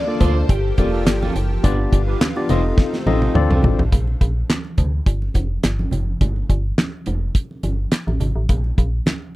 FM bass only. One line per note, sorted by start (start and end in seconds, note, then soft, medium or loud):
0.21 0.44 D2 medium
0.49 0.72 G1 loud
0.78 1.08 F1 medium
1.07 1.30 G1 loud
1.36 1.58 F#1 medium
1.64 1.87 G1 loud
1.93 2.15 G1 loud
2.50 2.72 F1 medium
3.06 3.29 A1 medium
3.35 3.47 D2 loud
3.50 3.61 C2 loud
3.64 3.76 G#1 loud
3.79 3.90 A1 medium
3.92 4.15 A#1 loud
4.21 4.44 A#1 loud
4.78 5.01 D2 medium
5.06 5.29 G1 loud
5.35 5.58 F1 loud
5.64 5.87 G1 medium
5.92 6.15 F#1 medium
6.21 6.44 G1 loud
6.50 6.72 G1 loud
7.07 7.30 F1 medium
7.63 7.86 G1 medium
8.07 8.18 A1 medium
8.20 8.33 G#1 medium
8.36 8.46 A1 medium
8.49 8.72 A#1 loud
8.78 9.01 A#1 loud